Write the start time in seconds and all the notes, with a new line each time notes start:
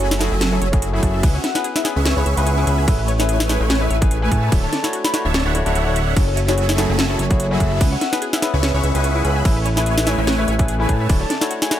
Already playing: F#1 F#3 A3 C#4 E4 F#4 G#4 A4 C#5 E5 G#5
0.00 closed hi-hat
0.11 E4, snare
0.19 A3 C#4 E4 F#4 G#4 A4, snare, closed hi-hat
0.32 F#1 F#3 F#4 A4 E5 G#5
0.41 A4, snare, closed hi-hat
0.51 A3 C#4 E4 F#4 G#4 A4 C#5
0.61 F#1 F#3 F#4 A4 C#5 E5 G#5, closed hi-hat
0.72 A3 C#4 E4 F#4 G#4, kick, closed hi-hat
0.82 F#4, closed hi-hat
0.92 A3 C#4 E4 F#4 G#4 E5
1.03 F#1 F#3 F#4 A4 E5 A5, kick, closed hi-hat
1.14 E5
1.22 C#2 B3 C#4 E4 G#4 B4 E5 C#6, kick, closed hi-hat, crash
1.35 C#5 F#5
1.44 E5, snare, closed hi-hat
1.54 B3 C#4 E4 G#4 B4, snare, closed hi-hat
1.64 G#4, closed hi-hat
1.76 E4 E5, snare
1.84 B3 C#4 E4 G#4 B4, snare, closed hi-hat
1.96 C#2 C#4 G#4 B4 E5 G#5 C#6
2.05 C#5, snare, closed hi-hat
2.16 C#2 B3 C#4 E4 G#4 B4 C#5 E5 C#6
2.26 C#2 C#4 G#4 B4 E5 C#6, closed hi-hat
2.36 C#2 B3 C#4 E4 G#4 B4 E5 C#6, closed hi-hat
2.46 G#4, closed hi-hat
2.57 B3 C#4 E4 G#4 B4
2.67 C#2 C#4 G#4 B4 E5 B5, closed hi-hat
2.78 G#5
2.87 A1 A3 C#4 E4 G#4 B4 C#5 E5 G#5, kick, closed hi-hat, crash
2.99 B4
3.08 C#5, closed hi-hat
3.19 A3 C#4 E4 G#4 A4 B4 E5, snare, closed hi-hat
3.29 G#4, closed hi-hat
3.40 E4, snare
3.48 A3 C#4 E4 G#4 B4 C#5, snare, closed hi-hat
3.61 A1 A3 E4 B4 C#5 E5 G#5
3.70 B4, snare, closed hi-hat
3.80 A3 C#4 E4 G#4 B4 E5
3.90 A1 A3 E4 B4 C#5 G#5, closed hi-hat
4.01 A3 C#4 E4 G#4 A4 B4, kick, closed hi-hat
4.11 G#4, closed hi-hat
4.21 A3 C#4 E4 G#4 B4 G#5
4.32 A2 A3 E4 G#4 B4 C#5 A5, kick, closed hi-hat
4.43 E5
4.51 D1 D3 A3 D4 E4 F#4 C#5 E5 A5, kick, closed hi-hat, crash
4.63 C#5 A5
4.73 D5, snare, closed hi-hat
4.83 A3 D4 E4 F#4 A4 C#5, snare, closed hi-hat
4.93 F#4, closed hi-hat
5.04 E4 B5, snare
5.13 A3 D4 E4 F#4 C#5, snare, closed hi-hat
5.25 D1 D3 D4 C#5 E5 A5
5.34 C#5, snare, closed hi-hat
5.45 D1 D3 A3 D4 E4 F#4 C#5 E5 F#5
5.54 A3 D4 E4 F#4 C#5, closed hi-hat
5.65 D1 D3 A3 D4 E4 F#4 C#5 E5 F#5, closed hi-hat
5.75 D1 D3 D4 E4 C#5 E5 F#5, closed hi-hat
5.86 A3 D4 E4 F#4 C#5
5.96 E5, closed hi-hat
6.07 E5
6.15 F#1 F#3 A3 C#4 E4 F#4 G#4 A4 C#5 E5 G#5, kick, closed hi-hat, crash
6.28 A4
6.37 C#5, closed hi-hat
6.47 A3 C#4 E4 F#4 G#4 C#5, snare, closed hi-hat
6.58 F#4, closed hi-hat
6.69 E4, snare
6.77 A3 C#4 E4 F#4 G#4 A4, snare, closed hi-hat
6.89 F#1 F#3 F#4 A4 E5 G#5
6.99 A4, snare, closed hi-hat
7.09 A3 C#4 E4 F#4 G#4 A4 C#5
7.19 F#1 F#3 F#4 A4 C#5 E5 G#5, closed hi-hat
7.30 A3 C#4 E4 F#4 G#4, kick, closed hi-hat
7.40 F#4, closed hi-hat
7.50 A3 C#4 E4 F#4 G#4 E5
7.60 F#1 F#3 F#4 A4 E5 A5, kick, closed hi-hat
7.72 E5
7.80 C#2 B3 C#4 E4 G#4 B4 E5 C#6, kick, closed hi-hat, crash
7.92 C#5 F#5
8.01 E5, snare, closed hi-hat
8.11 B3 C#4 E4 G#4 B4, snare, closed hi-hat
8.22 G#4, closed hi-hat
8.33 E4 E5, snare
8.41 B3 C#4 E4 G#4 B4, snare, closed hi-hat
8.54 C#2 C#4 G#4 B4 E5 G#5 C#6
8.63 C#5, snare, closed hi-hat
8.73 C#2 B3 C#4 E4 G#4 B4 C#5 E5 C#6
8.83 C#2 C#4 G#4 B4 E5 C#6, closed hi-hat
8.94 C#2 B3 C#4 E4 G#4 B4 E5 C#6, closed hi-hat
9.04 G#4, closed hi-hat
9.14 B3 C#4 E4 G#4 B4
9.25 C#2 C#4 G#4 B4 E5 B5, closed hi-hat
9.36 G#5
9.44 A1 A3 C#4 E4 G#4 B4 C#5 E5 G#5, kick, closed hi-hat, crash
9.56 B4
9.66 C#5, closed hi-hat
9.76 A3 C#4 E4 G#4 A4 B4 E5, snare, closed hi-hat
9.86 G#4, closed hi-hat
9.97 E4, snare
10.06 A3 C#4 E4 G#4 B4 C#5, snare, closed hi-hat
10.18 A1 A3 E4 B4 C#5 E5 G#5
10.27 B4, snare, closed hi-hat
10.38 A3 C#4 E4 G#4 B4 E5
10.48 A1 A3 E4 B4 C#5 G#5, closed hi-hat
10.58 A3 C#4 E4 G#4 A4 B4, kick, closed hi-hat
10.68 G#4, closed hi-hat
10.79 A3 C#4 E4 G#4 B4 G#5
10.89 A2 A3 E4 G#4 B4 C#5 A5, kick, closed hi-hat
11.00 E5
11.09 D1 D3 A3 D4 E4 F#4 C#5 E5 A5, kick, closed hi-hat, crash
11.21 C#5 A5
11.30 D5, snare, closed hi-hat
11.40 A3 D4 E4 F#4 A4 C#5, snare, closed hi-hat
11.51 F#4, closed hi-hat
11.62 E4 G#5, snare
11.70 A3 D4 E4 F#4 C#5, snare, closed hi-hat